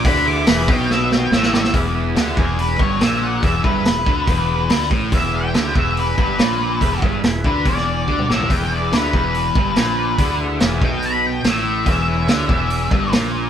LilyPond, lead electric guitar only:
\new Staff \with { instrumentName = "Lead electric guitar" } { \time 4/4 \key e \mixolydian \tempo 4 = 142 b''8 d'''8 b''8 g''8 e''8 g''8 e''8 e''8 | r4. gis'8 b'8 cis''8 e''8 fis''8 | e''8 b'2. r8 | e''8 g''4 e''8 b'8 b'4.~ |
b'8 r4 b'8 d''4. e''8 | g''8 d''8 b'8 b'2~ b'8~ | b'8 r4 g''8 b''8 g''8 e''4 | e''2. r4 | }